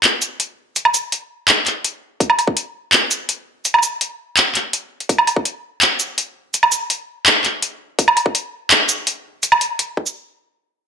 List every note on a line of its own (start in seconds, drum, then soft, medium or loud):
0.04 clap loud
0.04 closed hi-hat medium
0.22 closed hi-hat medium
0.22 shaker medium
0.40 closed hi-hat medium
0.76 closed hi-hat medium
0.76 shaker soft
0.85 low woodblock medium
0.94 closed hi-hat medium
0.94 shaker medium
1.12 closed hi-hat medium
1.48 clap loud
1.48 closed hi-hat medium
1.66 clap soft
1.66 closed hi-hat medium
1.84 closed hi-hat medium
2.20 kick loud
2.20 closed hi-hat medium
2.30 low woodblock medium
2.39 closed hi-hat medium
2.39 low woodblock soft
2.47 kick loud
2.57 closed hi-hat medium
2.93 clap loud
2.93 closed hi-hat medium
3.11 closed hi-hat medium
3.11 shaker medium
3.29 closed hi-hat medium
3.65 closed hi-hat medium
3.65 shaker soft
3.74 low woodblock medium
3.79 low woodblock soft
3.83 closed hi-hat medium
3.83 shaker medium
4.01 closed hi-hat medium
4.37 clap loud
4.37 closed hi-hat medium
4.55 clap soft
4.55 closed hi-hat medium
4.73 closed hi-hat medium
5.00 closed hi-hat soft
5.09 kick loud
5.09 closed hi-hat medium
5.18 low woodblock medium
5.27 closed hi-hat medium
5.27 low woodblock soft
5.36 kick loud
5.45 closed hi-hat medium
5.82 clap loud
5.82 closed hi-hat medium
6.00 closed hi-hat medium
6.00 shaker medium
6.18 closed hi-hat medium
6.54 closed hi-hat medium
6.54 shaker soft
6.63 low woodblock medium
6.72 closed hi-hat medium
6.72 shaker medium
6.90 closed hi-hat medium
7.26 clap loud
7.26 closed hi-hat medium
7.45 clap soft
7.45 closed hi-hat medium
7.62 closed hi-hat medium
7.99 kick loud
7.99 closed hi-hat medium
8.08 low woodblock medium
8.17 closed hi-hat medium
8.17 low woodblock soft
8.26 kick loud
8.35 closed hi-hat medium
8.71 clap loud
8.71 closed hi-hat medium
8.89 closed hi-hat medium
8.89 shaker medium
9.07 closed hi-hat medium
9.43 closed hi-hat medium
9.43 shaker soft
9.52 low woodblock medium
9.61 closed hi-hat medium
9.79 closed hi-hat medium
9.97 kick medium
10.06 shaker soft